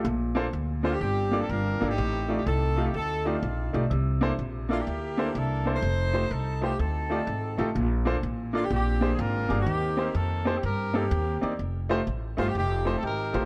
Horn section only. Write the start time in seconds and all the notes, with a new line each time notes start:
0.84 F4
0.92 G4
1.01 C4 D4 G4
1.40 A4
1.48 D4 F4 A#4
1.88 C4 D#4 G4
2.36 G4
2.45 C4 D#4 A4
2.85 G4
2.94 C4 D#4 A4
3.26 C4 D4 F4
4.72 F4
4.79 A#3 E4 G4
5.27 G4
5.35 D4 E4 A4
5.75 D#4 A4 C5
6.31 A4
6.63 G4
6.79 C4 D#4 A4
8.56 F4
8.64 G4
8.72 C4 D4 G4
9.11 G#4
9.19 D4 F4 A#4
9.59 A#3 C4 G4
10.07 G4
10.15 C4 A4
10.55 G4
10.63 G4 A#4
10.94 A#3 C4 G4
12.40 F4
12.49 G4
12.56 C4 D#4 G4
12.96 A4
13.03 D#4 G4 A#4